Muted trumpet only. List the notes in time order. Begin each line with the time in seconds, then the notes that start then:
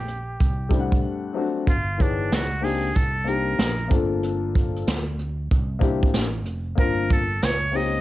Already playing: G4
1.69 F4
2.02 D4
2.34 F#4
2.64 G#4
2.96 A4
3.28 A#4
6.80 A#4
7.13 A4
7.44 C#5
7.76 D#5